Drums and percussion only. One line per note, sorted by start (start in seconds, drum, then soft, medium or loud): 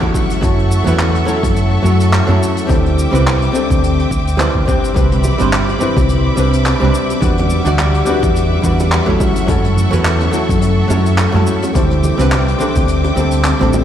0.02 kick medium
0.14 kick loud
0.14 cabasa loud
0.30 closed hi-hat medium
0.30 cabasa medium
0.43 kick loud
0.43 closed hi-hat medium
0.43 cabasa soft
0.59 closed hi-hat soft
0.72 cabasa loud
0.87 closed hi-hat medium
0.87 cabasa medium
0.99 clap loud
0.99 closed hi-hat medium
0.99 cabasa soft
1.15 closed hi-hat medium
1.28 cabasa medium
1.43 kick loud
1.43 closed hi-hat medium
1.43 cabasa medium
1.56 closed hi-hat medium
1.56 cabasa medium
1.86 cabasa medium
2.00 closed hi-hat medium
2.00 cabasa medium
2.13 clap loud
2.13 closed hi-hat medium
2.13 cabasa soft
2.43 cabasa medium
2.57 closed hi-hat medium
2.57 cabasa medium
2.69 kick loud
2.69 closed hi-hat medium
2.69 cabasa medium
2.86 closed hi-hat soft
2.99 cabasa medium
3.14 closed hi-hat medium
3.14 cabasa medium
3.27 clap loud
3.27 closed hi-hat medium
3.27 cabasa soft
3.42 closed hi-hat soft
3.55 cabasa medium
3.70 kick loud
3.70 closed hi-hat medium
3.70 cabasa medium
3.84 closed hi-hat medium
3.84 cabasa medium
3.99 closed hi-hat soft
4.11 kick medium
4.11 cabasa medium
4.27 closed hi-hat medium
4.27 cabasa medium
4.40 clap loud
4.40 closed hi-hat medium
4.40 cabasa medium
4.55 kick medium
4.68 kick loud
4.68 cabasa medium
4.84 closed hi-hat medium
4.84 cabasa medium
4.96 kick loud
4.96 closed hi-hat medium
4.96 high bongo soft
4.96 cabasa medium
5.12 closed hi-hat soft
5.12 high conga medium
5.24 high bongo medium
5.24 low conga medium
5.24 cabasa medium
5.39 closed hi-hat medium
5.39 cabasa medium
5.52 clap loud
5.52 closed hi-hat medium
5.52 cabasa soft
5.69 closed hi-hat medium
5.69 high bongo soft
5.81 low conga medium
5.81 cabasa medium
5.97 kick loud
5.97 closed hi-hat medium
5.97 high bongo medium
5.97 cabasa medium
6.09 closed hi-hat medium
6.09 cabasa soft
6.37 high bongo soft
6.37 cabasa medium
6.53 closed hi-hat medium
6.53 cabasa medium
6.66 clap medium
6.66 closed hi-hat medium
6.66 high bongo medium
6.66 cabasa medium
6.82 high conga medium
6.94 cabasa medium
7.10 closed hi-hat medium
7.10 high bongo soft
7.10 cabasa medium
7.22 kick loud
7.22 closed hi-hat medium
7.22 cabasa medium
7.38 closed hi-hat soft
7.38 high bongo medium
7.38 high conga medium
7.50 low conga medium
7.50 cabasa medium
7.65 closed hi-hat medium
7.65 cabasa medium
7.79 clap medium
7.79 closed hi-hat medium
7.79 high bongo medium
7.79 cabasa soft
7.94 closed hi-hat soft
8.06 high bongo medium
8.06 low conga medium
8.06 cabasa medium
8.23 kick loud
8.23 closed hi-hat medium
8.23 cabasa medium
8.36 closed hi-hat medium
8.36 cabasa medium
8.52 high bongo soft
8.64 kick medium
8.64 cabasa medium
8.80 closed hi-hat medium
8.80 high bongo medium
8.80 cabasa medium
8.92 clap medium
8.92 closed hi-hat medium
8.92 cabasa medium
9.08 kick medium
9.08 high conga medium
9.20 kick loud
9.20 high bongo medium
9.20 cabasa medium
9.36 closed hi-hat medium
9.36 cabasa medium
9.48 kick loud
9.48 closed hi-hat medium
9.48 high bongo medium
9.48 cabasa soft
9.64 closed hi-hat medium
9.64 high conga medium
9.77 low conga medium
9.77 cabasa medium
9.93 closed hi-hat medium
9.93 high bongo medium
9.93 cabasa medium
10.05 clap loud
10.05 closed hi-hat medium
10.05 cabasa medium
10.20 closed hi-hat medium
10.20 high bongo medium
10.33 low conga medium
10.33 cabasa medium
10.49 kick loud
10.49 closed hi-hat medium
10.49 cabasa medium
10.62 closed hi-hat medium
10.62 high bongo medium
10.62 cabasa medium
10.90 high bongo medium
10.90 cabasa medium
11.06 closed hi-hat medium
11.06 cabasa medium
11.18 clap loud
11.18 closed hi-hat medium
11.18 cabasa medium
11.34 high bongo medium
11.34 high conga loud
11.47 cabasa medium
11.62 closed hi-hat medium
11.62 high bongo medium
11.62 cabasa medium
11.75 kick loud
11.75 closed hi-hat medium
11.75 cabasa medium
11.90 closed hi-hat soft
11.90 high conga medium
12.04 high bongo medium
12.04 low conga loud
12.04 cabasa medium
12.19 closed hi-hat medium
12.19 cabasa medium
12.31 clap medium
12.31 closed hi-hat medium
12.31 high bongo medium
12.31 cabasa medium
12.48 closed hi-hat medium
12.60 low conga medium
12.60 cabasa medium
12.76 kick loud
12.76 closed hi-hat medium
12.76 high bongo soft
12.76 cabasa medium
12.88 closed hi-hat medium
12.88 cabasa soft
13.04 closed hi-hat soft
13.04 high bongo medium
13.17 cabasa medium
13.32 closed hi-hat medium
13.32 cabasa medium
13.44 clap loud
13.44 closed hi-hat medium
13.44 high bongo medium
13.44 cabasa medium
13.61 closed hi-hat medium
13.61 high conga medium
13.73 high bongo medium
13.73 cabasa medium